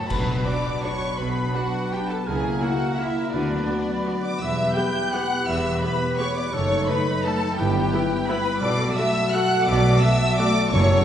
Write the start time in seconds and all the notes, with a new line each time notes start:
Already playing: F#2 A2 C#3 A3 C#4
0.10 B1 B2 B3 D4 F#4 B4 B5, concert bass drum, crash
0.19 F#3
0.28 B3
0.37 D4
0.46 D4 F#4 B4 D5 D6
0.56 B4
0.65 D5
0.74 F#5
0.83 D4 F#4 B4 C#5 C#6
0.93 F#4
1.02 D4
1.11 B3
1.19 B1 B2 D4 B4 B5
1.28 F#3
1.37 B3
1.46 D4
1.55 D4 F#4 B4 F#5
1.65 B4
1.75 D5
1.84 F#5
1.92 D4 F#4 G4 B4 G5
2.02 F#4
2.10 D4 A4 A5
2.19 B3
2.26 C#2 C#3 A#3 E4 G#4 A#4 G#5
2.36 C#4
2.44 A#3
2.53 E4
2.62 A#3 E4 F#4 A#4 F#5
2.71 E4
2.81 E5
2.90 A#5
2.98 A#3 E4 A#4 E5
3.08 E4
3.17 A#3
3.26 C#4
3.33 D2 D3 B3 D4 F#4 B4 D5
3.42 D4
3.51 F#3
3.60 F#4
3.68 B3 F#4 B4
3.78 F#4
3.88 F#5
3.97 B5
4.06 B3 F#4
4.15 B4
4.24 F#4 D5 D6
4.33 F#3
4.41 E1 E2 E3 B3 G4 B4 E5 E6
4.50 G3
4.59 E4
4.68 B4
4.76 B3 G4 B4 G5 G6
4.86 E5
4.96 B5
5.05 G5
5.12 B3 G4 E5 F#5 F#6
5.23 G4
5.32 B4
5.40 E4
5.47 E1 E2 E3 G4 B4 E5 E6
5.56 G3
5.65 E4
5.74 B4
5.82 B3 G4 B4 B5
5.92 E5
6.02 B5
6.11 G5
6.18 B3 G4 C#5 C#6
6.29 G4
6.36 D5 D6
6.45 E4
6.53 F#1 F#2 A3 D#4 A4 C#5 C#6
6.62 D#3
6.70 F#3
6.79 D#4
6.88 A3 D#4 A4 B4 B5
6.98 F#4
7.08 D#5
7.17 A5
7.24 A3 D#4 F#4 A4 A5
7.34 A4
7.43 D#4
7.50 F#3
7.58 G1 G2 B3 E4 G4 B4 G5
7.67 G3
7.75 B3
7.83 E4
7.93 B3 E4 B4
8.01 E4
8.11 E5
8.20 B5
8.29 B3 E4 B4 B5
8.38 E4
8.46 B3
8.55 G3
8.62 B1 B2 A3 F#4 A4 D5 D6
8.71 F#3
8.80 B3
8.88 F#4
8.97 A3 F#4 A4 E5 E6
9.07 B4
9.16 F#5
9.25 A5
9.33 A3 F#4 A4 B4 F#5 F#6
9.42 A4
9.59 B3
9.67 B1 B2 F#4 A4 D5 D6
9.76 F#3
9.84 B3
9.93 F#4
10.02 A3 F#4 A4 E5 E6
10.11 B4
10.21 F#5
10.30 A5
10.38 A3 F#4 A4 B4 D5 D6
10.48 A4
10.56 F#4
10.64 B3
10.72 F#1 F#2 A3 F#4 A4 C#5 C#6
10.81 C#3
10.89 A3
10.98 F#4